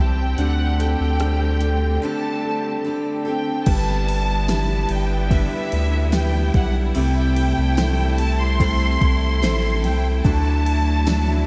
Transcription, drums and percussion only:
0.38 closed hi-hat medium
0.80 closed hi-hat medium
1.20 cross-stick medium
1.20 closed hi-hat medium
1.61 closed hi-hat medium
3.66 kick loud
3.66 crash loud
3.66 ride medium
4.09 ride medium
4.48 snare medium
4.48 ride medium
4.48 tambourine medium
4.89 ride medium
5.31 kick medium
5.31 ride medium
5.72 ride medium
6.12 snare loud
6.12 ride medium
6.12 tambourine medium
6.54 kick medium
6.54 snare soft
6.54 ride soft
6.95 ride medium
7.36 ride medium
7.77 snare loud
7.77 ride medium
7.77 tambourine medium
8.18 ride medium
8.60 kick medium
8.60 ride medium
9.01 kick medium
9.01 ride medium
9.42 snare loud
9.42 ride medium
9.42 tambourine medium
9.84 snare soft
9.84 ride medium
10.25 kick loud
10.25 ride medium
10.66 ride medium
11.07 snare loud
11.07 ride medium
11.07 tambourine loud

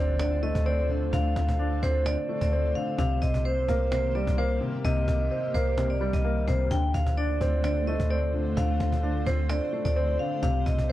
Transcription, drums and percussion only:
0.09 cajon slap soft
0.20 cajon slap loud
0.32 cajon slap soft
0.43 cajon slap soft
0.55 cajon bass loud
0.66 cajon slap soft
0.79 cajon slap soft
0.89 cajon slap soft
1.02 cajon slap soft
1.13 cajon bass loud
1.25 cajon slap soft
1.36 cajon bass medium
1.36 cajon slap medium
1.48 cajon bass medium
1.59 cajon slap soft
1.72 cajon slap soft
1.82 cajon bass loud
1.95 cajon slap soft
2.06 cajon slap loud
2.18 cajon slap soft
2.29 cajon slap soft
2.41 cajon bass loud
2.52 cajon slap soft
2.65 cajon slap soft
2.75 cajon slap soft
2.88 cajon slap soft
2.99 cajon bass loud
3.22 cajon bass medium
3.34 cajon bass medium
3.45 cajon slap soft
3.58 cajon slap soft
3.68 cajon bass loud
3.68 cajon slap medium
3.81 cajon slap soft
3.92 cajon slap loud
4.15 cajon slap soft
4.27 cajon bass loud
4.51 cajon slap soft
4.61 cajon slap soft
4.74 cajon slap soft
4.85 cajon bass loud
4.97 cajon slap soft
5.08 cajon bass medium
5.08 cajon slap medium
5.31 cajon slap soft
5.44 cajon slap soft
5.55 cajon bass loud
5.67 cajon slap soft
5.78 cajon slap loud
6.01 cajon slap soft
6.09 cajon slap soft
6.13 cajon bass loud
6.13 cajon slap soft
6.24 cajon slap soft
6.37 cajon slap soft
6.47 cajon bass medium
6.71 cajon bass loud
6.83 cajon slap soft
6.94 cajon bass medium
7.06 cajon bass medium
7.30 cajon slap soft
7.41 cajon bass medium
7.41 cajon slap medium
7.64 cajon slap loud
7.87 cajon slap soft
7.99 cajon bass loud
8.23 cajon slap soft
8.34 cajon slap soft
8.46 cajon slap soft
8.57 cajon bass loud
8.69 cajon slap soft
8.80 cajon bass medium
8.80 cajon slap medium
8.92 cajon bass medium
9.03 cajon slap soft
9.16 cajon slap soft
9.27 cajon bass loud
9.50 cajon slap loud
9.62 cajon slap soft
9.73 cajon slap soft
9.85 cajon bass loud
9.97 cajon slap soft
10.09 cajon slap soft
10.20 cajon slap soft
10.32 cajon slap soft
10.43 cajon bass loud
10.66 cajon bass loud
10.78 cajon bass medium

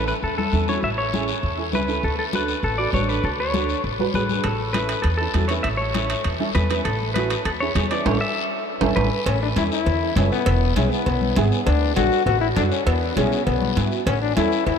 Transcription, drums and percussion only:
0.08 short guiro medium
0.23 high conga soft
0.23 long guiro medium
0.39 high conga medium
0.53 high conga medium
0.53 short guiro medium
0.68 high conga medium
0.68 short guiro medium
0.83 long guiro medium
0.99 high conga soft
1.13 high conga medium
1.13 short guiro medium
1.28 short guiro medium
1.43 high conga soft
1.43 long guiro medium
1.73 high conga medium
1.73 short guiro medium
1.88 short guiro medium
2.03 long guiro medium
2.18 high conga soft
2.33 high conga medium
2.33 short guiro medium
2.48 short guiro medium
2.63 high conga soft
2.63 long guiro medium
2.94 high conga medium
2.94 short guiro medium
3.09 short guiro medium
3.24 long guiro medium
3.39 high conga soft
3.54 high conga medium
3.54 short guiro medium
3.69 short guiro medium
3.84 high conga soft
3.84 long guiro medium
3.99 high conga medium
4.14 high conga medium
4.14 short guiro medium
4.29 high conga medium
4.29 short guiro medium
4.44 high timbale medium
4.44 long guiro medium
4.60 high conga soft
4.74 high conga medium
4.74 high timbale medium
4.74 short guiro medium
4.89 high timbale medium
4.89 short guiro medium
5.04 high conga soft
5.04 high timbale medium
5.04 long guiro medium
5.34 high conga medium
5.34 high timbale medium
5.34 short guiro medium
5.49 high timbale medium
5.49 short guiro medium
5.64 high timbale medium
5.64 long guiro medium
5.80 high conga soft
5.94 high conga medium
5.94 high timbale medium
5.94 short guiro medium
6.10 high timbale medium
6.10 short guiro medium
6.24 high conga soft
6.24 high timbale medium
6.24 long guiro medium
6.40 high conga medium
6.55 high conga medium
6.55 high timbale medium
6.55 short guiro medium
6.70 high conga medium
6.70 high timbale medium
6.70 short guiro medium
6.85 high timbale medium
7.01 high conga soft
7.15 high conga medium
7.15 high timbale medium
7.15 short guiro medium
7.30 high timbale medium
7.30 short guiro medium
7.45 high conga soft
7.45 high timbale medium
7.45 long guiro medium
7.76 high conga medium
7.76 high timbale medium
7.76 short guiro medium
7.91 high timbale medium
7.91 short guiro medium
8.06 high conga loud
8.06 high timbale loud
8.06 long guiro medium
8.81 high conga medium
8.81 high timbale loud
8.81 long guiro medium
8.96 high conga loud
8.96 high timbale medium
8.96 long guiro loud
9.26 cowbell loud
9.56 cowbell medium
9.56 high conga medium
9.56 short guiro medium
9.72 short guiro medium
9.86 cowbell medium
9.86 low conga medium
9.86 long guiro medium
10.17 cowbell medium
10.17 high conga medium
10.17 low conga medium
10.17 low timbale medium
10.17 short guiro medium
10.32 short guiro medium
10.46 cowbell loud
10.46 low conga medium
10.46 long guiro medium
10.76 cowbell medium
10.76 high conga medium
10.76 short guiro medium
10.92 short guiro medium
11.06 cowbell medium
11.06 low conga medium
11.06 long guiro medium
11.22 high conga medium
11.36 cowbell medium
11.36 high conga medium
11.36 short guiro medium
11.52 short guiro medium
11.67 cowbell loud
11.67 low conga medium
11.67 long guiro medium
11.97 cowbell medium
11.97 high conga medium
11.97 short guiro medium
12.12 short guiro medium
12.27 cowbell medium
12.27 low conga medium
12.27 long guiro medium
12.56 cowbell medium
12.56 high conga medium
12.56 short guiro medium
12.72 short guiro medium
12.87 cowbell loud
12.87 long guiro medium
13.16 cowbell medium
13.16 high conga medium
13.16 short guiro medium
13.32 short guiro medium
13.47 cowbell medium
13.47 low conga medium
13.47 long guiro medium
13.62 high conga medium
13.76 cowbell medium
13.76 high conga medium
13.76 short guiro medium
13.92 short guiro medium
14.07 cowbell loud
14.07 low conga medium
14.07 long guiro medium
14.37 cowbell medium
14.37 high conga medium
14.37 short guiro medium
14.52 short guiro medium
14.67 cowbell medium
14.67 low conga medium
14.67 long guiro medium

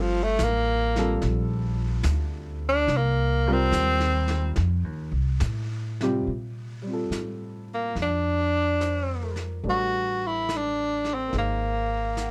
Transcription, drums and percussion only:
0.39 snare medium
0.39 hi-hat pedal medium
0.96 snare soft
1.22 brush sweep soft
1.22 snare soft
2.03 snare medium
2.03 hi-hat pedal soft
2.88 brush sweep soft
2.88 snare soft
3.72 snare medium
3.72 hi-hat pedal medium
4.00 snare soft
4.28 snare soft
4.30 snare soft
4.56 brush sweep soft
4.56 snare soft
5.40 snare medium
5.40 hi-hat pedal soft
6.01 snare soft
6.27 brush sweep soft
7.12 snare soft
7.12 hi-hat pedal soft
7.96 brush sweep soft
7.96 snare soft
8.81 snare soft
8.81 hi-hat pedal soft
9.36 snare soft
9.65 brush sweep soft
10.49 snare soft
10.49 hi-hat pedal soft
11.05 snare soft
11.33 brush sweep soft
11.33 snare soft
12.17 snare soft
12.17 hi-hat pedal soft

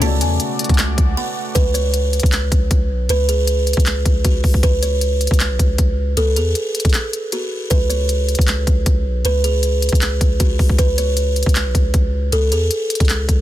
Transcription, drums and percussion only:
0.02 closed hi-hat medium
0.21 closed hi-hat medium
0.40 closed hi-hat medium
0.59 closed hi-hat medium
0.64 closed hi-hat medium
0.69 kick loud
0.69 closed hi-hat medium
0.74 closed hi-hat medium
0.78 cross-stick medium
0.78 clap loud
0.78 closed hi-hat medium
0.98 kick medium
0.98 closed hi-hat medium
1.55 kick loud
1.55 closed hi-hat medium
1.75 closed hi-hat medium
1.94 closed hi-hat medium
2.13 closed hi-hat soft
2.20 kick loud
2.20 closed hi-hat medium
2.26 closed hi-hat medium
2.32 clap loud
2.32 closed hi-hat medium
2.52 kick medium
2.52 closed hi-hat medium
2.71 kick loud
2.71 closed hi-hat medium
3.09 closed hi-hat medium
3.29 closed hi-hat medium
3.47 closed hi-hat medium
3.67 closed hi-hat soft
3.73 kick loud
3.73 closed hi-hat medium
3.80 closed hi-hat medium
3.86 clap loud
3.86 closed hi-hat medium
4.05 kick medium
4.05 closed hi-hat medium
4.25 kick loud
4.25 closed hi-hat medium
4.44 kick medium
4.44 open hi-hat medium
4.54 kick medium
4.63 kick loud
4.63 closed hi-hat medium
4.83 closed hi-hat medium
5.01 closed hi-hat medium
5.21 closed hi-hat soft
5.27 kick loud
5.27 closed hi-hat medium
5.34 closed hi-hat medium
5.40 clap loud
5.40 closed hi-hat medium
5.59 kick medium
5.59 closed hi-hat medium
5.78 kick loud
5.78 closed hi-hat medium
6.17 closed hi-hat medium
6.36 closed hi-hat medium
6.55 closed hi-hat medium
6.75 closed hi-hat medium
6.80 closed hi-hat medium
6.85 kick loud
6.85 closed hi-hat medium
6.89 closed hi-hat soft
6.94 clap loud
6.94 closed hi-hat medium
7.13 closed hi-hat medium
7.32 closed hi-hat medium
7.71 kick loud
7.71 closed hi-hat medium
7.90 closed hi-hat medium
8.09 closed hi-hat medium
8.29 closed hi-hat soft
8.35 kick medium
8.35 closed hi-hat medium
8.41 closed hi-hat medium
8.48 clap loud
8.48 closed hi-hat medium
8.67 kick medium
8.67 closed hi-hat medium
8.86 kick loud
8.86 closed hi-hat medium
9.25 closed hi-hat medium
9.44 closed hi-hat medium
9.63 closed hi-hat medium
9.82 closed hi-hat soft
9.89 kick loud
9.89 closed hi-hat medium
9.95 closed hi-hat medium
10.02 clap loud
10.02 closed hi-hat medium
10.21 kick medium
10.21 closed hi-hat medium
10.40 kick loud
10.40 closed hi-hat medium
10.59 kick loud
10.59 open hi-hat soft
10.69 kick medium
10.79 kick loud
10.79 closed hi-hat medium
10.98 closed hi-hat medium
11.17 closed hi-hat medium
11.36 closed hi-hat soft
11.43 kick loud
11.43 closed hi-hat medium
11.49 closed hi-hat medium
11.55 clap loud
11.55 closed hi-hat medium
11.75 kick medium
11.75 closed hi-hat medium
11.94 kick loud
11.94 closed hi-hat medium
12.32 closed hi-hat medium
12.52 closed hi-hat medium
12.71 closed hi-hat medium
12.90 closed hi-hat medium
12.95 closed hi-hat medium
13.00 kick loud
13.00 closed hi-hat medium
13.05 closed hi-hat soft
13.09 clap loud
13.09 closed hi-hat medium
13.29 kick medium
13.29 closed hi-hat medium

